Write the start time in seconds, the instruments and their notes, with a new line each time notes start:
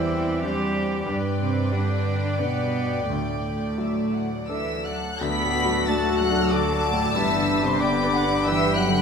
Already playing: grand piano E2 G3, double bass section E2, cello section E3, viola section C4, cello E4, violin section D5 G5
0.43 cello section G3, grand piano D4 C5, cello G4
1.06 grand piano G2, double bass section G2, viola section B4, violin section D5 G5
1.39 cello section C3, cello C4
1.72 cello section D3, grand piano G3, cello D4
2.40 cello section B2, cello B3, grand piano D4 B4
3.09 grand piano D2, double bass section D2, cello section A2, cello A3, viola section A3
3.78 grand piano F#3, violin section E5
4.14 violin section F#5
4.48 cello section E3, grand piano D4 A4, flute section E5, violin section E6
4.85 cello section F#3, flute section F#5, violin section A5 F#6
5.20 grand piano D2, double bass section D2, viola section A3 F#4, french horn section A3 F#4, cello section B3, clarinet F#4, cor anglais A4, violin section D5 B6, flute section B5
5.44 grand piano A2
5.65 grand piano F#3
5.87 cello section A3, grand piano D4, violin section F#5 A6, flute section A5
6.09 grand piano A4
6.19 cello section F#3, flute section F#5, violin section F#6
6.30 grand piano D4
6.51 cello section D3, grand piano A4, flute section D5, violin section A5 D6
6.73 grand piano F#3
6.93 grand piano A2
7.15 double bass section G1, grand piano G2, cello section E3, french horn section B3 D4, viola section B3 D4, clarinet G4, cor anglais B4, flute section E5, violin section E6
7.37 grand piano D3
7.60 cello section C3, grand piano G3
7.64 flute section C5, violin section C6
7.80 cello section D3, grand piano D4, flute section D5, violin section G5 D6
8.03 grand piano B4
8.12 violin section F#5
8.25 grand piano D4
8.44 cello section E3, grand piano B4, flute section E5, violin section G5 E6
8.66 grand piano G3
8.76 cello section F#3, flute section F#5, violin section F#6
8.88 grand piano D3